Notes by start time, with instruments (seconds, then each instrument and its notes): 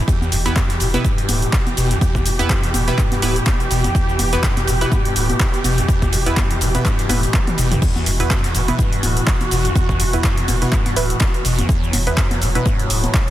Already playing: string section B2 E3
0.08 acid bass E2, string section G4, kick, ride, shaker
0.21 sub bass E1, high conga, shaker
0.32 sub bass E1, acid bass A2, open hi-hat, ride, shaker
0.46 acid bass E2, synth stab B3 E4 B4, closed hi-hat, shaker
0.56 acid bass F#2, kick, snare, clap, ride, high conga, shaker
0.70 acid bass E2, snare, closed hi-hat, shaker
0.80 sub bass E1, acid bass B2, open hi-hat, ride, shaker
0.94 acid bass B2, synth stab B3 E4 B4, closed hi-hat, high conga, shaker
1.05 acid bass G2, kick, ride, shaker
1.18 closed hi-hat, shaker
1.28 sub bass D1, acid bass A2, open hi-hat, ride, high conga, shaker
1.42 closed hi-hat, shaker
1.53 acid bass F#2, kick, snare, clap, ride, shaker
1.67 closed hi-hat, high conga, shaker
1.77 sub bass E1, acid bass B2, open hi-hat, ride, shaker
1.91 acid bass E2, closed hi-hat, shaker
2.01 acid bass E2, kick, ride, high conga, shaker
2.15 sub bass E1, kick, shaker
2.25 sub bass E1, acid bass A2, open hi-hat, ride, shaker
2.39 acid bass E2, synth stab B3 E4 B4, closed hi-hat, high conga, shaker
2.49 acid bass F#2, kick, snare, clap, ride, shaker
2.63 acid bass E2, closed hi-hat, shaker
2.74 sub bass E1, acid bass B2, open hi-hat, ride, high conga, shaker
2.88 acid bass B2, synth stab B3 E4 B4, snare, closed hi-hat, shaker
2.98 acid bass G2, kick, clap, ride, shaker
3.12 snare, closed hi-hat, high conga, shaker
3.22 sub bass D1, acid bass A2, synth stab B3 E4 B4, open hi-hat, ride, shaker
3.36 closed hi-hat, shaker
3.46 acid bass F#2, kick, snare, clap, ride, high conga, shaker
3.60 closed hi-hat, shaker
3.71 sub bass E1, acid bass B2, open hi-hat, ride, shaker
3.84 acid bass E2, closed hi-hat, high conga, shaker
3.95 acid bass E2, kick, ride, shaker
4.09 sub bass E1, shaker
4.19 sub bass E1, acid bass A2, open hi-hat, ride, high conga, shaker
4.33 acid bass E2, synth stab B3 E4 B4, closed hi-hat, shaker
4.43 acid bass F#2, kick, snare, clap, ride, shaker
4.57 acid bass E2, snare, closed hi-hat, high conga, shaker
4.67 sub bass E1, acid bass B2, open hi-hat, ride, shaker
4.81 acid bass B2, synth stab B3 E4 B4, closed hi-hat, shaker
4.92 acid bass G2, kick, ride, high conga, shaker
5.05 closed hi-hat, shaker
5.16 sub bass D1, acid bass A2, open hi-hat, ride, shaker
5.29 closed hi-hat, high conga, shaker
5.39 acid bass F#2, kick, snare, clap, ride, shaker
5.54 closed hi-hat, shaker
5.64 sub bass E1, acid bass B2, open hi-hat, ride, high conga, shaker
5.78 acid bass E2, closed hi-hat, shaker
5.88 acid bass E2, kick, ride, shaker
6.02 sub bass E1, kick, closed hi-hat, high conga, shaker
6.12 sub bass E1, acid bass A2, open hi-hat, ride, shaker
6.26 acid bass E2, synth stab B3 E4 B4, closed hi-hat, shaker
6.37 acid bass F#2, kick, snare, clap, ride, high conga, shaker
6.51 acid bass E2, closed hi-hat, shaker
6.61 sub bass E1, acid bass B2, open hi-hat, ride, shaker
6.75 acid bass B2, synth stab B3 E4 B4, snare, closed hi-hat, high conga, shaker
6.85 acid bass G2, kick, clap, ride, shaker
6.98 snare, closed hi-hat, shaker
7.09 sub bass E1, acid bass A2, synth stab B3 E4 B4, snare, open hi-hat, high tom, ride, high conga, shaker
7.23 snare, closed hi-hat, shaker
7.34 acid bass F#2, kick, clap, mid tom, ride, shaker
7.47 closed hi-hat, mid tom, high conga, shaker
7.58 sub bass E1, acid bass B2, open hi-hat, ride, shaker
7.71 acid bass E2, closed hi-hat, mid tom, shaker
7.82 acid bass E2, string section F#4, kick, crash, ride, shaker
7.96 sub bass E1, high conga, shaker
8.06 sub bass E1, acid bass A2, open hi-hat, ride, shaker
8.20 acid bass E2, synth stab B3 E4 B4, closed hi-hat, shaker
8.30 acid bass F#2, kick, snare, clap, ride, high conga, shaker
8.44 acid bass E2, snare, closed hi-hat, shaker
8.54 sub bass E1, acid bass B2, open hi-hat, ride, shaker
8.68 acid bass B2, synth stab B3 E4 B4, closed hi-hat, high conga, shaker
8.79 acid bass G2, kick, ride, shaker
8.93 closed hi-hat, shaker
9.03 sub bass D1, acid bass A2, open hi-hat, ride, high conga, shaker
9.17 closed hi-hat, shaker
9.27 acid bass F#2, kick, snare, clap, ride, shaker
9.41 closed hi-hat, high conga, shaker
9.51 sub bass E1, acid bass B2, open hi-hat, ride, shaker
9.65 acid bass E2, closed hi-hat, shaker
9.75 acid bass E2, kick, ride, high conga, shaker
9.89 sub bass E1, kick, shaker
10.00 sub bass E1, acid bass A2, open hi-hat, ride, shaker
10.13 acid bass E2, synth stab B3 E4 B4, closed hi-hat, high conga, shaker
10.24 acid bass F#2, kick, snare, clap, ride, shaker
10.38 acid bass E2, closed hi-hat, shaker
10.48 sub bass E1, acid bass B2, open hi-hat, ride, high conga, shaker
10.62 acid bass B2, synth stab B3 E4 B4, snare, closed hi-hat, shaker
10.72 acid bass G2, kick, clap, ride, shaker
10.86 snare, closed hi-hat, high conga, shaker
10.96 sub bass D1, acid bass A2, synth stab B3 E4 B4, open hi-hat, ride, shaker
11.10 closed hi-hat, shaker
11.20 acid bass F#2, kick, snare, clap, ride, high conga, shaker
11.34 closed hi-hat, shaker
11.45 sub bass E1, acid bass B2, open hi-hat, ride, shaker
11.58 acid bass E2, closed hi-hat, high conga, shaker
11.69 acid bass E2, string section F#3, kick, ride, shaker
11.83 sub bass E1, shaker
11.93 sub bass E1, acid bass A2, open hi-hat, ride, high conga, shaker
12.07 acid bass E2, synth stab B3 E4 B4, closed hi-hat, shaker
12.17 acid bass F#2, kick, snare, clap, ride, shaker
12.31 acid bass E2, snare, closed hi-hat, high conga, shaker
12.41 sub bass E1, acid bass B2, open hi-hat, ride, shaker
12.55 acid bass B2, synth stab B3 E4 B4, closed hi-hat, shaker
12.65 acid bass G2, kick, ride, high conga, shaker
12.79 closed hi-hat, shaker
12.90 sub bass D1, acid bass A2, open hi-hat, ride, shaker
13.04 closed hi-hat, high conga, shaker
13.14 acid bass F#2, kick, snare, clap, ride, shaker